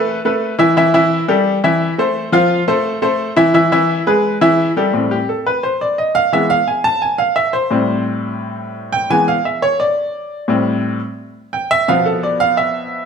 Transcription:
upright piano
Already playing: A3 A4 B4
0.25 A3 A4 B4
0.59 E3 E4 E5
0.77 E3 E4 E5
0.94 E3 E4 E5
1.28 G3 G4 A4
1.64 E3 E4 E5
1.98 A3 A4 C5
2.32 F3 F4 F5
2.68 A3 A4 C5
3.02 A3 A4 C5
3.36 E3 E4 E5
3.54 E3 E4 E5
3.72 E3 E4 E5
4.07 G#3 G#4 B4
4.41 E3 E4 E5
4.77 G3 G4 A4
4.93 A2 G3 C4
5.11 G4
5.29 A4
5.47 B4
5.63 C5
5.81 D5
5.98 D#5
6.15 F5
6.32 E3 G#3 B3 E5
6.50 F5
6.68 G#5
6.84 A5
7.02 G#5
7.18 F5
7.36 E5
7.53 C5
7.71 A2 G3 C4
8.92 G5
9.10 E3 G#3 B3 G#5
9.28 F5
9.45 E5
9.62 C#5
9.80 D5
10.48 A2 G3 C4
11.53 G5
11.71 E5
11.88 B2 F3 B3 F5
12.06 A4
12.23 D5
12.40 F5
12.57 E5

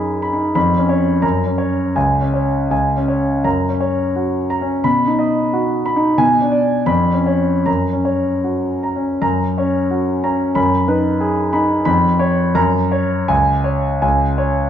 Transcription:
grand piano
Already playing: F#2 D#4 G#4 D#5 B5
0.22 B5
0.33 D#4
0.55 F2 B5
0.78 C#4
0.89 C#5
1.22 F#2 A#5
1.46 C#4
1.58 C#5
1.96 C#2 G#5
2.21 C#4
2.34 C#5
2.70 C#2 G#5
2.96 C#4
3.08 C#5
3.44 F#2 A#5
3.69 C#4
3.80 C#5
4.16 F#4
4.50 A#5
4.61 C#4
4.84 B2 B5
5.07 D#4
5.19 D#5
5.53 F#4
5.86 B5
5.96 D#4
6.18 B2 G#5
6.41 D4
6.52 D5
6.86 F2 B5
7.13 C#4
7.26 C#5
7.66 F#2 A#5
7.93 C#4
8.05 C#5
8.44 F#4
8.83 A#5
8.96 C#4
9.22 F#2 A#5
9.57 C#4 C#5
9.91 F#4
10.24 C#4 A#5
10.55 F#2 B5
10.88 D#4 B4
11.20 G#4
11.53 D#4 B5
11.85 F2 B5
12.19 C#5
12.55 F#2 A#5
12.92 C#5
13.28 C#2 G#5
13.64 C#5
14.02 C#2 G#5
14.38 C#5

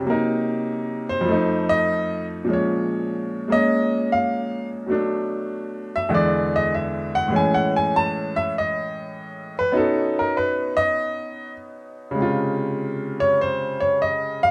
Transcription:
upright piano
0.00 C3 F#3
0.07 A#3 A#4
0.11 D#4
1.09 C5
1.21 F2 F3
1.28 A3 D#4
1.69 D#5
2.45 A#2 F3 G#3
2.50 C#4 C#5
3.48 G#3 A#3 C#4
3.52 D#5
4.12 F5
4.86 B2 F#3 A3
4.91 D4
5.96 E5
6.09 E2 D3 E3 G#3
6.14 D5
6.56 D#5
6.74 E5
7.15 F#5
7.28 A2 E3 G#3
7.33 C#4 G#5
7.54 F#5
7.76 G#5
7.96 A5
8.36 E5
8.58 D#5
9.59 B4
9.72 B2 B3 C#4 D#4
9.77 A4
10.19 A#4
10.37 B4
10.77 D#5
12.11 C#3 G#3
12.18 C3 F4
13.20 C#5
13.41 C5
13.80 C#5
14.02 D#5
14.43 F5

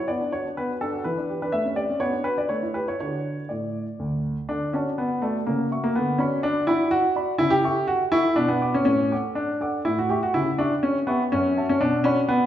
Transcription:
grand piano
0.08 B3 D5
0.21 D4
0.32 F#4 C#5
0.46 D4
0.57 B3 B4
0.69 F#4
0.81 D4 A4
0.93 F#4
1.04 E3 B4
1.18 D4
1.30 G4
1.42 D4 B4
1.52 A3 E5
1.65 C#4
1.76 G4 D5
1.90 C#4
2.00 B3 C#5
2.13 D4
2.24 F#4 B4
2.38 D4 D5
2.49 A3 C#5
2.63 E4
2.74 G4 B4
2.88 E4 C#5
3.00 D3 D4 F#4 C#5
3.49 A2 D5
3.99 D2
4.49 D3 D4
4.73 C#4 F#4 D5 A5
4.98 B3
5.22 A3 F#4 D5 A5
5.47 C#3 A#3
5.71 F#4 E5 C#6
5.84 A#3
5.95 D3 B3
6.18 C#4 F#4 D5 B5
6.43 D4
6.67 E4 F#4 D5 B5
6.91 F#4
7.16 F#4 D5 B5
7.38 C#3 E4
7.50 G4
7.64 A4 E5 C#6
7.87 F#4
8.12 E4 A4 E5 C#6
8.36 B2 D4
8.48 B3
8.61 F#4 F#5 D6
8.74 C#4
8.85 A2 C#4
9.12 A4 F#5 D6
9.35 D4
9.61 A4 F#5 D6
9.85 A2 E4
9.99 F#4
10.09 G4 A4 E5 C#6
10.23 F#4
10.34 C#3 E4
10.58 D4 G4 E5 C#6
10.83 C#4
11.07 B3 G4 E5 C#6
11.32 F#2 C#4
11.56 F#4 E5 A5
11.69 C#4
11.81 B2 D4
12.04 C#4 F#4 D5 B5
12.29 B3

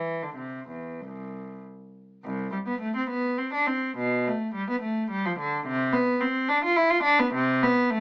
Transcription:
cello
Already playing: E3
0.23 D3
0.36 C3
0.69 E2
1.00 C2
2.24 C2
2.52 G3
2.67 B3
2.81 A3
2.96 C4
3.10 B3
3.38 C4
3.53 D4
3.67 C4
3.97 B2
4.27 A3
4.54 G3
4.70 B3
4.82 A3
5.10 G3
5.25 F3
5.39 D3
5.67 C3
5.93 B3
6.20 C4
6.49 D4
6.64 F4
6.76 E4
6.90 F4
7.03 D4
7.19 B3
7.34 C3
7.63 B3
7.90 A3

